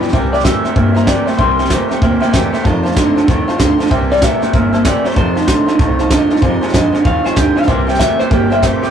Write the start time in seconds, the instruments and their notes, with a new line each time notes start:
0.00 clean electric guitar G2 E3, steel-string acoustic guitar F3 B3 D4 G4, honky-tonk piano B4 D5 G5, muted upright bass stroke, snare
0.08 honky-tonk piano C5, snare
0.13 upright bass C2, steel-string acoustic guitar C3 E3 A#3 C4 G4, clean electric guitar C3 G3, honky-tonk piano E5 G5, kick, snare
0.32 clean electric guitar C3 G3 D5, steel-string acoustic guitar A#3 C4 G4, honky-tonk piano C5 E5 G5, snare
0.40 honky-tonk piano C5 E5, snare
0.44 steel-string acoustic guitar C3 E3 A#3 C4 G4, clean electric guitar C3 A3 E5, honky-tonk piano G5, kick, snare, hi-hat pedal
0.64 clean electric guitar C3 A3, steel-string acoustic guitar A#3 C4 G4, honky-tonk piano C5 E5 G5, muted upright bass stroke, snare
0.75 upright bass G2, clean electric guitar C3 A#3, steel-string acoustic guitar E3 A#3 C4 G4, honky-tonk piano C5 E5 G5, kick, snare
0.95 clean electric guitar C3 A#3, steel-string acoustic guitar C4 G4, honky-tonk piano C5 E5 A#5, snare
0.99 steel-string acoustic guitar A#3
1.05 clean electric guitar C3 A3 D5, steel-string acoustic guitar C3 E3, honky-tonk piano C5 E5 G5, kick, snare, hi-hat pedal
1.10 steel-string acoustic guitar A#3 C4 G4
1.26 clean electric guitar C3 A3 C5, steel-string acoustic guitar G4, honky-tonk piano C5 E5 G5, muted upright bass stroke, snare
1.30 steel-string acoustic guitar A#3 C4, snare
1.37 upright bass C2, clean electric guitar C3 G3 C5, steel-string acoustic guitar C3 A#3, honky-tonk piano C5 E5 G5, kick, snare
1.41 steel-string acoustic guitar E3 C4 G4
1.57 clean electric guitar C3 G3, steel-string acoustic guitar G4, honky-tonk piano C5 E5 G5, snare
1.62 steel-string acoustic guitar A#3 C4, snare
1.69 clean electric guitar C3 A3, steel-string acoustic guitar C3 E3 A#3 C4 G4, honky-tonk piano C5 E5 G5, kick, snare, hi-hat pedal
1.89 clean electric guitar C3 A3, steel-string acoustic guitar C4 G4, honky-tonk piano C5 E5 G5, muted upright bass stroke, snare
1.93 steel-string acoustic guitar A#3
2.01 upright bass D2, clean electric guitar C3 A#3, steel-string acoustic guitar E3 A#3 C4 G4, honky-tonk piano C5 E5 G5, kick, snare
2.20 clean electric guitar C3 A#3, steel-string acoustic guitar G4, honky-tonk piano C5 E5 G5, snare
2.24 steel-string acoustic guitar A#3 C4
2.31 upright bass E2, clean electric guitar C3 A3, steel-string acoustic guitar C3 E3 A#3 C4, honky-tonk piano C5 E5 G5, kick, snare, hi-hat pedal
2.35 steel-string acoustic guitar G4
2.52 clean electric guitar C3 A3, steel-string acoustic guitar A#3 C4 G4, honky-tonk piano C5 E5 G5, snare
2.60 honky-tonk piano C5, snare
2.64 steel-string acoustic guitar F2 C3 D#3 A3 C4 F4, clean electric guitar F2 C3, upright bass F2, honky-tonk piano F5 A5, kick, snare
2.83 clean electric guitar F2 C3, steel-string acoustic guitar A3 C4 F4, honky-tonk piano C5 F5 A5, snare
2.88 steel-string acoustic guitar D#3, snare
2.95 steel-string acoustic guitar F2 C3 D#3 A3 C4 F4, clean electric guitar F2 D3, honky-tonk piano C5 F5 C6, kick, snare, hi-hat pedal
3.16 clean electric guitar F2 D3, steel-string acoustic guitar D#3 A3 C4 F4, honky-tonk piano C5 F5 A5, muted upright bass stroke, snare
3.27 upright bass D#2, clean electric guitar F2 D#3, steel-string acoustic guitar D#3 A3 C4 F4, honky-tonk piano C5 F5 A5, kick, snare
3.48 clean electric guitar F2 D#3, steel-string acoustic guitar D#3 A3 C4 F4, honky-tonk piano C5 F5 A5, snare
3.58 upright bass D2, steel-string acoustic guitar F2 C3 D#3 A3 C4 F4, clean electric guitar F2 D3, honky-tonk piano C5 F5 C6, kick, snare, hi-hat pedal
3.78 clean electric guitar F2 D3, steel-string acoustic guitar A3 C4 F4, honky-tonk piano C5 F5 A5, snare
3.82 steel-string acoustic guitar D#3, snare
3.89 upright bass C2, clean electric guitar C3 G3, steel-string acoustic guitar C3 E3 A#3 C4 G4, honky-tonk piano C5 E5 G5, kick, snare
4.10 clean electric guitar C3 G3 D5, steel-string acoustic guitar C4 G4, honky-tonk piano C5 E5 G5, snare
4.14 steel-string acoustic guitar A#3, snare
4.21 steel-string acoustic guitar C3 E3 A#3 C4 G4, clean electric guitar C3 A3 E5, honky-tonk piano C5 E5 G5, kick, snare, hi-hat pedal
4.41 clean electric guitar C3 A3, steel-string acoustic guitar C4 G4, honky-tonk piano C5 E5 G5, muted upright bass stroke, snare
4.45 steel-string acoustic guitar A#3
4.52 upright bass G1, clean electric guitar C3 A#3, steel-string acoustic guitar E3 A#3 C4 G4, honky-tonk piano C5 E5 A#5, kick, snare
4.73 clean electric guitar C3 A#3, steel-string acoustic guitar A#3 C4 G4, honky-tonk piano C5 E5 A5, snare
4.85 clean electric guitar C3 A3 D5, steel-string acoustic guitar C3 E3 A#3 C4 G4, honky-tonk piano C5 E5 G5, kick, snare, hi-hat pedal
5.04 clean electric guitar C3 A3 C5, steel-string acoustic guitar A#3 C4 G4, honky-tonk piano C5 E5 A#5, muted upright bass stroke, snare
5.11 snare
5.15 upright bass F2, clean electric guitar F2 C3 C5, steel-string acoustic guitar F2 C3 D#3 A3 D#4 F4, honky-tonk piano C5 F5 A5, kick, snare
5.35 clean electric guitar F2 C3, steel-string acoustic guitar A3 D#4 F4, honky-tonk piano C5 F5 A5, snare
5.40 steel-string acoustic guitar D#3, snare
5.47 clean electric guitar F2 D3, steel-string acoustic guitar F2 C3 D#3 A3 D#4 F4, honky-tonk piano C5 F5 A5, kick, snare, hi-hat pedal
5.66 clean electric guitar F2 D3, steel-string acoustic guitar D#3 A3 D#4 F4, honky-tonk piano C5 F5 A5, muted upright bass stroke, snare
5.79 upright bass C2, clean electric guitar F2 D#3, steel-string acoustic guitar D#3 A3 D#4 F4, honky-tonk piano C5 F5 A5, kick, snare
5.99 clean electric guitar F2 D#3, steel-string acoustic guitar D#3 A3 D#4 F4, honky-tonk piano C5 F5 A5, snare
6.10 steel-string acoustic guitar F2 C3 D#3 A3 D#4 F4, clean electric guitar F2 D3, honky-tonk piano C5 F5 A5, kick, snare, hi-hat pedal
6.30 clean electric guitar F2 D3, steel-string acoustic guitar D#3 A3 D#4 F4, honky-tonk piano C5 F5 A5, muted upright bass stroke, snare
6.36 snare
6.41 upright bass F2, clean electric guitar F2 C3, steel-string acoustic guitar F2 C3 D#3 G#3 C4 F4, honky-tonk piano C5 F5 G#5, kick, snare
6.61 clean electric guitar F2 C3, steel-string acoustic guitar D#3 G#3 C4 F4, honky-tonk piano C5 F5 G#5, snare
6.68 honky-tonk piano C5, snare
6.73 clean electric guitar F2 D3, steel-string acoustic guitar F2 C3 D#3 G#3 C4 F4, upright bass F2, honky-tonk piano F5 G#5, kick, snare, hi-hat pedal
6.93 clean electric guitar F2 D3, steel-string acoustic guitar D#3 G#3 C4 F4, honky-tonk piano C5 F5 G#5, muted upright bass stroke, snare
7.04 upright bass D#2, clean electric guitar F2 D#3 F5, steel-string acoustic guitar D#3 G#3 C4 F4, honky-tonk piano C5 F5 G#5, kick, snare
7.24 clean electric guitar F2 D#3 C5, steel-string acoustic guitar D#3 G#3 C4 F4, honky-tonk piano C5 F5 G#5, muted upright bass stroke, snare
7.36 upright bass D2, steel-string acoustic guitar F2 C3 D#3 G#3 C4 F4, clean electric guitar F2 D3 G4, honky-tonk piano C5 F5 G#5, kick, snare, hi-hat pedal
7.55 clean electric guitar F2 D3 F5, steel-string acoustic guitar D#3 G#3 C4 F4, honky-tonk piano C5 F5 G#5, muted upright bass stroke, snare
7.63 honky-tonk piano C5 E5, snare
7.67 upright bass C2, steel-string acoustic guitar C3 E3 A#3 C4 G4, clean electric guitar C3 G3 C5, honky-tonk piano G5, kick, snare
7.87 clean electric guitar C3 G3 G4, steel-string acoustic guitar A#3 C4 G4, honky-tonk piano C5 E5 G5, snare
7.95 steel-string acoustic guitar C3 E3 A#3, honky-tonk piano C5, snare
7.99 clean electric guitar C3 A3 E5, steel-string acoustic guitar C4 G4, honky-tonk piano E5 G5, kick, snare, hi-hat pedal
8.19 clean electric guitar C3 A3 C5, steel-string acoustic guitar A#3 C4 G4, honky-tonk piano C5 E5 G5, muted upright bass stroke, snare
8.30 upright bass G1, clean electric guitar C3 A#3 G4, steel-string acoustic guitar E3 A#3 C4 G4, honky-tonk piano C5 E5 G5, kick, snare
8.50 clean electric guitar C3 A#3 E5, steel-string acoustic guitar A#3 C4 G4, honky-tonk piano C5 E5 G5, snare
8.62 steel-string acoustic guitar C3 E3 A#3 C4 G4, clean electric guitar C3 A3 C5, honky-tonk piano C5 E5 G5, kick, snare, hi-hat pedal
8.81 clean electric guitar C3 A3 G4, steel-string acoustic guitar C4 G4, honky-tonk piano C5 E5 G5, muted upright bass stroke, snare
8.86 steel-string acoustic guitar A#3